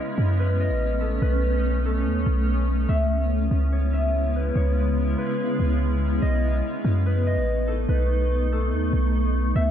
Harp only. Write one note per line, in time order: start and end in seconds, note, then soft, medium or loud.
0.00 0.39 B4 medium
0.00 0.60 D#5 medium
0.40 1.22 B4 medium
0.60 2.38 D#5 medium
1.01 1.85 A4 medium
1.22 3.27 B4 loud
1.85 4.05 A4 medium
2.89 3.93 E5 loud
3.72 4.56 C#5 medium
3.93 5.65 E5 medium
4.36 5.18 B4 medium
4.56 6.48 C#5 medium
5.18 7.06 B4 medium
6.22 7.26 D#5 medium
7.06 7.88 B4 medium
7.27 9.05 D#5 medium
7.67 8.52 A4 medium
7.89 9.71 B4 medium
8.52 9.71 A4 medium
9.56 9.71 E5 loud